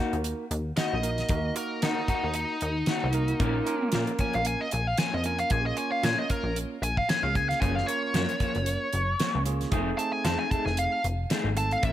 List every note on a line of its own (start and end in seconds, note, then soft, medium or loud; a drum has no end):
0.00 0.44 A#3 medium
0.00 0.16 A#3 soft
0.00 0.15 D#4 medium
0.00 0.44 D#4 medium
0.00 0.15 F#4 medium
0.00 0.45 F#4 medium
0.00 0.45 A#4 medium
0.13 0.34 D#2 medium
0.13 closed hi-hat soft
0.24 closed hi-hat medium
0.51 0.72 D#2 medium
0.51 closed hi-hat medium
0.77 0.94 D#3 medium
0.77 0.94 A#3 medium
0.77 0.94 D#4 medium
0.77 0.95 F#4 medium
0.77 1.54 D#5 medium
0.77 snare loud
0.77 closed hi-hat medium
0.93 1.24 A#1 medium
1.02 1.27 A#3 medium
1.02 1.28 D#4 medium
1.02 1.28 F#4 medium
1.02 1.28 A#4 medium
1.02 closed hi-hat medium
1.18 snare soft
1.18 closed hi-hat soft
1.29 1.51 D#2 loud
1.29 1.53 A#3 medium
1.29 1.54 D#4 medium
1.29 1.54 F#4 medium
1.29 1.55 A#4 medium
1.29 kick loud
1.29 closed hi-hat medium
1.55 2.55 A#3 medium
1.55 2.55 D#4 medium
1.55 2.55 F#4 medium
1.55 2.55 A#4 medium
1.55 1.82 A#4 loud
1.55 closed hi-hat medium
1.82 1.99 D#3 medium
1.82 1.94 D#3 loud
1.82 1.99 A#3 medium
1.82 2.08 D#4 medium
1.82 1.99 D#4 medium
1.82 2.00 F#4 medium
1.82 snare loud
1.82 closed hi-hat medium
2.08 2.16 D#2 soft
2.08 2.27 A#3 soft
2.08 2.34 D#4 medium
2.08 2.26 D#4 soft
2.08 2.25 F#4 medium
2.08 kick medium
2.08 closed hi-hat medium
2.24 2.45 D#2 medium
2.34 3.89 D#4 loud
2.34 closed hi-hat medium
2.61 2.83 D#2 medium
2.61 closed hi-hat medium
2.86 3.05 D#3 medium
2.86 3.05 A#3 medium
2.86 3.05 D#4 medium
2.86 3.05 F#4 medium
2.86 snare loud
2.86 closed hi-hat medium
3.04 3.34 C2 medium
3.13 3.38 A#3 medium
3.13 3.38 D#4 medium
3.13 3.39 F#4 medium
3.13 3.39 A#4 medium
3.13 closed hi-hat medium
3.28 closed hi-hat soft
3.40 3.62 A#1 loud
3.40 3.57 A#2 medium
3.40 3.57 F3 medium
3.40 3.65 A#3 medium
3.40 3.57 A#3 loud
3.40 3.65 C#4 medium
3.40 3.58 C#4 loud
3.40 3.65 F4 medium
3.40 3.66 A#4 medium
3.40 kick loud
3.40 closed hi-hat medium
3.66 4.66 A#3 medium
3.66 4.66 C#4 medium
3.66 4.66 F4 medium
3.66 4.66 A#4 medium
3.66 closed hi-hat medium
3.92 4.10 A#2 medium
3.92 4.06 A#2 loud
3.92 4.10 F3 medium
3.92 4.10 A#3 medium
3.92 4.11 C#4 loud
3.92 snare loud
3.92 closed hi-hat medium
4.07 closed hi-hat soft
4.19 4.27 A#1 soft
4.19 4.37 F3 soft
4.19 4.37 A#3 soft
4.19 4.36 C#4 medium
4.19 4.34 G#5 loud
4.19 kick medium
4.19 closed hi-hat medium
4.33 4.56 A#1 medium
4.33 4.46 F5 loud
4.33 closed hi-hat soft
4.45 4.60 G#5 loud
4.45 closed hi-hat medium
4.61 4.72 D#5 medium
4.71 4.94 A#1 medium
4.71 4.87 G#5 loud
4.71 closed hi-hat medium
4.87 4.98 F5 loud
4.98 5.15 A#2 medium
4.98 5.15 F3 medium
4.98 5.16 A#3 medium
4.98 5.16 C#4 medium
4.98 5.13 G#5 medium
4.98 snare loud
4.98 closed hi-hat medium
5.14 5.44 F2 medium
5.14 5.25 D#5 medium
5.24 5.49 A#3 medium
5.24 5.49 C#4 medium
5.24 5.50 F4 medium
5.24 5.50 A#4 medium
5.24 5.39 G#5 loud
5.24 closed hi-hat medium
5.39 5.51 F5 medium
5.39 closed hi-hat soft
5.50 5.72 A#1 loud
5.50 5.75 A#3 medium
5.50 5.75 C#4 medium
5.50 5.76 F4 medium
5.50 5.76 G#4 medium
5.50 5.65 G#5 loud
5.50 kick loud
5.50 closed hi-hat medium
5.66 5.77 D#5 medium
5.76 6.76 A#3 medium
5.76 6.77 C#4 medium
5.76 6.77 F4 medium
5.76 6.77 C#5 medium
5.76 5.91 G#5 medium
5.76 closed hi-hat medium
5.92 6.04 F5 loud
6.03 6.15 A#2 loud
6.03 6.21 A#2 medium
6.03 6.21 F3 medium
6.03 6.21 A#3 medium
6.03 6.21 C#4 medium
6.03 6.18 G#5 loud
6.03 snare loud
6.03 closed hi-hat medium
6.18 6.30 D#5 loud
6.30 6.38 A#1 soft
6.30 6.56 A#4 loud
6.30 kick medium
6.30 closed hi-hat medium
6.44 6.65 A#1 medium
6.56 closed hi-hat medium
6.82 7.04 A#1 medium
6.82 6.97 G#5 loud
6.82 closed hi-hat medium
6.97 7.09 F5 loud
6.97 kick medium
7.09 7.26 A#2 medium
7.09 7.26 F3 medium
7.09 7.26 A#3 medium
7.09 7.26 C#4 medium
7.09 7.23 G#5 medium
7.09 snare loud
7.09 closed hi-hat medium
7.23 7.54 C#2 medium
7.23 7.36 F5 loud
7.35 7.60 A#3 medium
7.35 7.60 C#4 medium
7.35 7.60 F4 medium
7.35 7.61 G#4 medium
7.35 7.48 G#5 loud
7.35 kick medium
7.35 closed hi-hat medium
7.49 7.61 F5 loud
7.49 snare soft
7.49 closed hi-hat soft
7.61 7.83 F#1 loud
7.61 7.79 F#2 medium
7.61 7.79 F3 medium
7.61 7.86 A#3 medium
7.61 7.79 A#3 medium
7.61 7.86 C#4 medium
7.61 7.79 C#4 medium
7.61 7.87 F4 medium
7.61 7.87 G#4 medium
7.61 7.75 G#5 loud
7.61 kick loud
7.61 closed hi-hat medium
7.75 7.87 F5 medium
7.75 snare soft
7.87 8.87 A#3 medium
7.87 8.87 C#4 medium
7.87 8.88 F4 medium
7.87 8.88 A#4 medium
7.87 9.42 C#5 loud
7.87 closed hi-hat medium
8.14 8.26 F#2 loud
8.14 8.31 F#2 medium
8.14 8.32 F3 medium
8.14 8.32 A#3 medium
8.14 8.32 C#4 medium
8.14 snare loud
8.14 closed hi-hat medium
8.29 closed hi-hat soft
8.40 8.48 F#1 soft
8.40 8.59 F3 soft
8.40 8.58 A#3 soft
8.40 8.58 C#4 medium
8.40 kick medium
8.40 closed hi-hat medium
8.55 8.77 F#1 medium
8.55 closed hi-hat soft
8.66 closed hi-hat medium
8.93 9.15 F#1 medium
8.93 closed hi-hat medium
9.20 9.37 F#2 medium
9.20 9.37 F3 medium
9.20 9.37 A#3 medium
9.20 9.37 C#4 medium
9.20 snare loud
9.20 closed hi-hat medium
9.35 9.66 C#2 medium
9.45 9.70 A#3 medium
9.45 9.71 C#4 medium
9.45 9.71 F4 medium
9.45 9.71 G#4 medium
9.45 closed hi-hat medium
9.61 snare soft
9.61 closed hi-hat soft
9.71 9.94 F1 loud
9.71 9.89 F3 medium
9.71 9.97 A3 medium
9.71 9.90 A3 medium
9.71 9.97 C4 medium
9.71 9.97 D#4 medium
9.71 9.90 D#4 medium
9.71 9.97 G#4 loud
9.71 9.90 G#4 medium
9.71 kick loud
9.71 closed hi-hat medium
9.98 10.98 A3 medium
9.98 10.99 C4 medium
9.98 10.99 D#4 medium
9.98 10.99 G#4 medium
9.98 10.12 A5 loud
9.98 closed hi-hat medium
10.13 10.25 G#5 loud
10.25 10.37 F2 loud
10.25 10.42 F3 medium
10.25 10.43 A3 medium
10.25 10.43 D#4 medium
10.25 10.43 G#4 medium
10.25 10.39 A5 loud
10.25 snare loud
10.25 closed hi-hat loud
10.39 10.51 G#5 loud
10.51 10.59 F1 soft
10.51 10.69 A3 soft
10.51 10.69 D#4 soft
10.51 10.69 G#4 medium
10.51 10.65 A5 loud
10.51 kick medium
10.51 closed hi-hat medium
10.66 10.88 F1 medium
10.66 10.77 G#5 loud
10.66 snare soft
10.77 11.04 F5 loud
10.77 closed hi-hat medium
11.04 11.26 F1 medium
11.04 closed hi-hat medium
11.30 11.47 F3 medium
11.30 11.48 A3 medium
11.30 11.48 D#4 medium
11.30 11.48 G#4 loud
11.30 snare loud
11.30 closed hi-hat medium
11.44 11.76 G#1 medium
11.55 11.81 A3 medium
11.55 11.81 C4 medium
11.55 11.82 D#4 medium
11.55 11.82 A4 medium
11.55 11.72 A5 loud
11.55 closed hi-hat medium
11.71 11.84 F5 loud
11.71 closed hi-hat soft
11.82 11.93 A#1 loud
11.82 11.93 A#2 medium
11.82 11.93 F3 medium
11.82 11.93 A#3 medium
11.82 11.93 C#4 medium
11.82 11.93 F4 medium
11.82 11.93 A#4 medium
11.82 11.93 E5 loud
11.82 kick loud
11.82 closed hi-hat medium